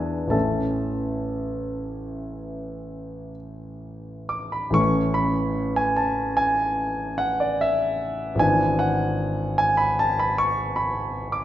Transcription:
0.00 0.29 E2 soft
0.00 0.12 E3 soft
0.00 0.29 B3 soft
0.00 0.30 D4 soft
0.00 0.29 G#4 soft
0.00 0.32 A4 soft
0.00 0.31 E5 soft
0.00 0.32 G#5 soft
0.00 0.30 A5 medium
0.27 4.69 A1 soft
0.27 4.70 E3 soft
0.27 4.71 A3 soft
0.27 3.31 E5 soft
0.27 3.34 A5 medium
0.31 4.73 C#4 soft
0.31 3.31 A4 soft
4.29 4.54 D6 medium
4.52 4.76 B5 soft
4.70 8.34 A1 soft
4.70 8.34 E3 soft
4.70 8.35 A3 soft
4.70 5.16 C#6 medium
4.75 8.36 C#4 soft
5.14 5.76 B5 medium
5.76 5.97 G#5 medium
5.97 6.37 A5 medium
6.37 7.19 G#5 medium
7.18 7.40 F#5 medium
7.40 7.61 D5 medium
7.61 8.41 E5 medium
8.35 11.44 G#1 medium
8.35 11.44 E3 soft
8.35 11.44 B3 soft
8.39 11.44 D4 soft
8.39 8.80 G#5 medium
8.79 9.59 F#5 medium
9.58 9.79 G#5 medium
9.77 9.98 B5 medium
9.99 10.19 A5 medium
10.19 10.39 B5 medium
10.38 10.77 C#6 medium
10.76 11.33 B5 medium
11.32 11.44 D6 medium

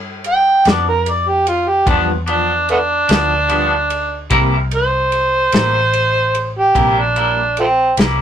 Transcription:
0.00 0.62 G2 medium
0.24 ride medium
0.28 0.66 G5 medium
0.65 1.84 F2 medium
0.65 0.91 F3 soft
0.65 0.90 B3 soft
0.65 0.90 D4 soft
0.65 0.86 D5 medium
0.65 snare medium
0.65 ride medium
0.89 1.11 A#4 medium
1.06 1.30 D5 medium
1.06 ride medium
1.29 1.46 G4 medium
1.47 1.70 F4 medium
1.47 ride medium
1.68 1.87 G4 medium
1.86 3.05 E2 medium
1.86 2.11 G2 medium
1.86 2.11 F3 medium
1.86 2.12 B3 medium
1.86 2.12 D4 medium
1.86 2.07 D4 medium
1.86 kick loud
1.86 ride medium
2.26 2.52 F3 soft
2.26 2.52 B3 soft
2.26 2.51 D4 soft
2.26 2.68 D4 medium
2.26 ride medium
2.69 2.77 A3 medium
2.69 2.78 B3 medium
2.69 4.28 D4 loud
2.69 ride medium
3.08 4.27 D2 medium
3.08 3.34 F3 soft
3.08 3.34 B3 soft
3.08 3.33 D4 medium
3.08 snare loud
3.08 ride medium
3.49 3.74 G2 medium
3.49 3.74 F3 medium
3.49 3.74 B3 medium
3.49 3.74 D4 medium
3.49 ride medium
3.90 ride medium
4.30 5.49 C2 medium
4.30 4.55 C3 medium
4.30 4.55 G3 medium
4.30 4.56 A#3 medium
4.30 4.56 E4 medium
4.30 kick loud
4.30 ride medium
4.71 ride medium
4.76 6.53 C5 loud
5.12 ride medium
5.52 6.71 A1 medium
5.52 5.79 G3 soft
5.52 5.78 A#3 soft
5.52 5.78 E4 soft
5.52 snare medium
5.52 ride medium
5.94 ride medium
6.35 ride medium
6.59 7.00 G4 medium
6.75 7.94 A#1 medium
6.75 6.99 C3 medium
6.75 7.00 G3 medium
6.75 7.00 A#3 medium
6.75 7.00 E4 medium
6.75 kick loud
6.75 ride medium
6.99 7.56 D4 medium
7.16 7.41 G3 soft
7.16 7.41 A#3 medium
7.16 7.40 E4 medium
7.16 ride medium
7.57 7.66 F3 medium
7.57 7.66 A3 medium
7.57 7.98 C4 medium
7.57 ride medium
7.97 8.22 C2 medium
7.97 8.22 G3 soft
7.97 8.22 A#3 medium
7.97 8.22 E4 medium
7.97 snare loud
7.97 ride medium

